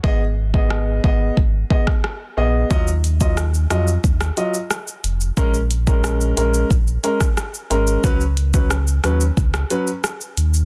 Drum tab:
HH |----------------|--x---x---x---x-|--x---x---x---x-|--x---x---x---x-|
SH |----------------|xxxxxxxxxxxxxxxx|xxxxxxxxxxxxxxxx|xxxxxxxxxxxxxxxx|
SD |----r------rr---|----r-r--r--r---|----r------rr---|----r-r--r--r---|
BD |o--o--o-o-oo----|o--o----o-------|o--o----o--o----|o--o----o-------|